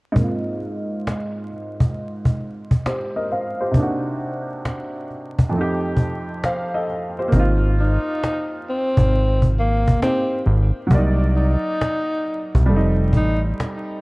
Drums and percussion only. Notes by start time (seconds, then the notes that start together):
0.16 cajon bass
0.61 cajon slap
1.07 cajon slap
1.52 cajon slap
1.80 cajon bass
1.95 cajon slap
2.25 cajon bass
2.41 cajon slap
2.71 cajon bass
2.86 cajon slap
3.31 cajon slap
3.74 cajon bass
4.20 cajon slap
4.65 cajon slap
5.10 cajon slap
5.39 cajon bass
5.53 cajon slap
5.97 cajon bass
6.28 cajon slap
6.44 cajon slap
6.89 cajon slap
7.32 cajon bass
8.23 cajon slap
8.97 cajon bass
9.42 cajon bass
9.88 cajon bass
10.02 cajon slap
10.91 cajon bass
11.81 cajon slap
12.55 cajon bass
13.13 cajon bass
13.60 cajon slap